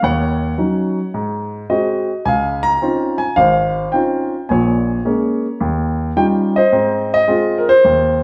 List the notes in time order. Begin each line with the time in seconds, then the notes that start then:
0.03 D#2 C#5 F#5
0.58 F#3 C#4 D#4
1.14 G#2
1.70 G#3 C4 F#4 D#5
2.25 C#2 F5 G#5
2.63 A#5
2.82 C4 C#4 D#4 F4
3.18 G#5
3.36 G#1 C5 F5
3.92 C4 C#4 D#4 F4 G5
4.49 A#1 A#2 C#5 G#5
5.05 G#3 A#3 C#4
5.60 D#2
6.16 G3 C#4 D#4 F4 G5
6.56 C5 D#5
6.72 G#2 C4
7.14 D#5
7.28 G#3 C4 F4
7.58 A#4
7.69 C5
7.84 D#2